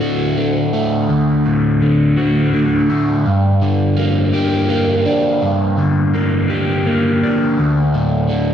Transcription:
0.00 0.72 D2 medium
0.00 1.09 A2 medium
0.00 0.36 D3 medium
0.00 1.81 F#4 medium
0.37 1.80 D3 medium
0.73 2.53 A3 medium
1.09 2.89 D2 medium
1.46 3.25 A2 medium
1.81 2.52 D3 medium
2.17 3.25 F#4 medium
2.54 3.25 D3 medium
2.90 3.25 A3 medium
3.26 5.06 G2 medium
3.62 5.42 D3 medium
3.97 4.68 A#3 medium
4.34 6.14 G4 medium
4.69 6.13 A#3 medium
5.06 7.23 D4 medium
5.43 7.22 G2 medium
5.78 7.58 D3 medium
6.14 6.85 A#3 medium
6.50 7.58 G4 medium
6.86 7.58 A#3 medium
7.23 8.54 D4 medium
7.59 8.54 D2 medium
7.94 8.54 A2 medium
8.29 8.54 D3 medium

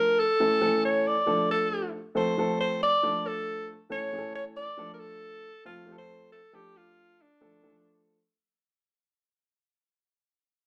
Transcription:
0.00 0.21 F3 medium
0.00 0.22 A3 medium
0.00 0.22 D4 medium
0.00 0.22 A4 medium
0.00 0.21 A#4 medium
0.20 0.84 A4 loud
0.40 0.58 E3 medium
0.40 0.58 A3 medium
0.40 0.58 C#4 medium
0.40 0.58 A4 medium
0.61 1.13 E3 medium
0.61 1.13 A3 medium
0.61 0.67 C4 medium
0.61 1.14 A4 medium
0.67 1.16 C#4 medium
0.85 1.09 C#5 medium
1.08 1.50 D5 loud
1.26 1.96 F3 medium
1.26 1.96 A3 medium
1.26 1.96 D4 medium
1.26 1.96 A4 medium
1.51 1.91 A4 medium
2.15 2.33 F3 medium
2.15 2.33 A3 medium
2.15 2.33 C4 medium
2.15 2.33 A4 medium
2.15 2.57 C5 loud
2.38 2.89 F3 medium
2.38 2.89 A3 medium
2.38 2.90 C4 medium
2.38 2.90 A4 medium
2.60 2.80 C5 loud
2.83 3.29 D5 loud
3.03 3.72 F3 medium
3.03 3.72 A3 medium
3.03 3.72 D4 medium
3.03 3.72 A4 medium
3.27 3.70 A4 loud
3.90 4.08 E3 medium
3.90 4.08 A3 medium
3.90 4.08 C#4 medium
3.90 4.08 A4 medium
3.90 4.32 C#5 loud
4.12 4.64 E3 medium
4.12 4.64 A3 medium
4.12 4.65 C#4 medium
4.12 4.18 G#4 medium
4.19 4.67 A4 medium
4.35 4.45 C#5 loud
4.57 4.91 D5 loud
4.77 5.47 F3 medium
4.77 5.47 A3 medium
4.77 5.47 D4 medium
4.77 5.47 A4 medium
4.94 5.01 A#4 medium
5.00 5.65 A4 loud
5.65 5.83 F3 medium
5.65 5.83 A3 medium
5.65 5.83 C4 medium
5.65 5.97 F4 loud
5.65 5.83 A4 medium
5.86 6.39 F3 medium
5.86 6.39 A3 medium
5.86 6.39 C4 medium
5.86 5.93 G4 medium
5.92 6.42 A4 medium
5.98 6.29 C5 loud
6.32 6.56 A4 loud
6.53 7.22 F3 medium
6.53 7.22 A3 medium
6.53 7.22 D4 medium
6.53 6.78 G4 loud
6.53 7.22 A4 medium
6.77 7.23 F4 loud
7.22 8.08 D4 medium
7.41 7.59 F3 medium
7.41 7.59 A3 medium
7.41 7.59 D4 medium
7.41 7.59 A4 medium
7.63 7.68 E3 medium
7.63 8.15 A3 medium
7.63 8.15 D4 medium
7.63 8.15 A4 medium
7.68 8.17 F3 medium

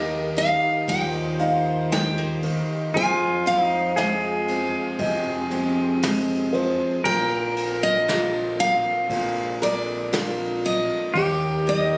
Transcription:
0.00 0.55 D#2 medium
0.00 2.94 D#2 medium
0.00 2.42 D#3 medium
0.00 2.90 D#3 medium
0.00 1.91 A#3 medium
0.00 0.36 D#4 medium
0.00 2.90 D#4 medium
0.00 2.89 G4 medium
0.00 2.90 G4 medium
0.00 0.86 A#4 medium
0.00 0.37 D#5 medium
0.00 2.68 D#5 medium
0.36 1.39 D#4 medium
0.36 0.85 F5 medium
0.36 ride medium
0.87 2.60 D#2 loud
0.87 2.43 A#2 medium
0.87 2.91 C5 medium
0.87 1.63 G5 medium
0.87 kick medium
0.87 ride medium
1.39 2.88 D#4 medium
1.39 3.41 F5 medium
1.39 ride soft
1.63 1.91 F5 medium
1.92 2.18 G#3 medium
1.92 2.96 G5 loud
1.92 snare medium
1.92 ride medium
2.18 2.94 A#3 soft
2.43 2.94 D#3 medium
2.43 ride soft
2.94 4.66 F2 medium
2.94 6.99 F2 medium
2.94 7.00 F3 medium
2.94 7.01 G#3 medium
2.94 11.11 C4 medium
2.94 3.63 F4 medium
2.94 6.99 G#4 medium
2.94 3.43 G#5 loud
2.94 kick medium
2.94 ride medium
3.46 6.52 F3 medium
3.46 5.48 F5 medium
3.46 ride medium
3.63 3.93 D#4 medium
3.96 6.03 G#3 medium
3.96 7.13 G#4 loud
3.96 7.30 G#5 medium
3.96 snare medium
3.96 ride medium
4.48 5.50 C4 medium
4.48 ride medium
4.99 6.71 F2 loud
4.99 6.53 C3 medium
4.99 7.52 D#5 medium
4.99 kick medium
4.99 ride medium
5.50 8.07 C4 medium
5.50 ride soft
6.02 7.05 G#3 medium
6.02 snare medium
6.02 ride medium
6.53 6.98 F3 medium
6.53 7.51 C5 medium
6.53 ride medium
7.04 8.76 A#1 medium
7.04 9.09 A#2 medium
7.04 11.12 D3 medium
7.04 9.07 A#3 medium
7.04 8.60 A#4 medium
7.04 7.83 G5 loud
7.04 kick medium
7.04 ride medium
7.56 ride medium
7.83 8.60 D#5 medium
8.08 10.13 F4 medium
8.08 snare medium
8.08 ride medium
8.59 9.62 A#4 medium
8.59 9.58 F5 medium
8.59 ride soft
9.10 10.82 A#1 medium
9.10 11.16 A#2 medium
9.10 11.14 G#3 medium
9.10 kick medium
9.10 ride medium
9.61 11.17 A#4 medium
9.61 10.65 D5 medium
9.61 ride medium
10.12 11.10 F4 medium
10.12 11.63 A#4 medium
10.12 snare medium
10.12 ride medium
10.64 11.68 D#5 medium
10.64 ride soft
11.14 11.98 D#2 medium
11.14 11.98 D#3 medium
11.14 11.98 D#4 medium
11.14 11.98 G4 medium
11.14 11.98 A#4 medium
11.14 kick medium
11.14 ride medium
11.67 11.98 D#3 medium
11.67 11.98 D#5 medium
11.67 ride soft

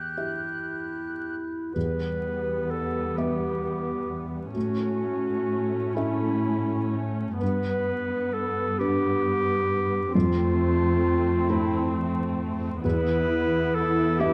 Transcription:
0.00 1.72 E2 soft
0.00 1.36 G4 soft
0.00 0.13 E5 soft
0.00 1.35 F#6 soft
0.15 1.76 E4 soft
0.15 1.72 G4 soft
0.15 1.72 E5 soft
1.74 4.51 E2 soft
1.74 3.13 E2 soft
1.74 4.51 G3 soft
1.74 4.51 B3 soft
1.74 2.72 B4 soft
2.71 3.19 A4 soft
3.17 4.51 B3 soft
3.17 4.37 G4 soft
3.17 4.52 G4 soft
3.17 4.52 E5 soft
4.54 7.37 A2 soft
4.54 5.92 A2 soft
4.54 7.41 A3 soft
4.54 7.37 C#4 soft
4.54 5.96 F#4 medium
5.94 7.37 C#4 soft
5.94 7.11 E4 medium
5.94 7.37 A4 soft
5.94 7.38 E5 soft
7.41 8.76 G2 soft
7.41 10.11 G2 soft
7.41 10.11 B3 soft
7.41 8.35 B4 medium
8.34 8.80 A4 medium
8.79 10.11 D4 soft
8.79 10.14 G4 medium
8.79 10.11 B4 soft
10.14 12.80 F2 soft
10.14 11.46 F2 soft
10.14 12.80 A3 soft
10.14 12.84 C4 soft
10.14 11.51 F4 medium
11.49 12.80 A3 soft
11.49 11.94 E4 medium
11.49 12.80 A4 soft
11.49 12.81 C5 soft
12.83 14.33 E2 medium
12.83 14.16 E2 soft
12.83 14.33 B3 medium
12.83 14.33 E4 medium
12.83 13.77 B4 medium
13.75 14.21 A4 medium
14.20 14.33 B3 soft
14.20 14.33 E4 soft
14.20 14.33 G4 medium
14.20 14.33 E5 soft

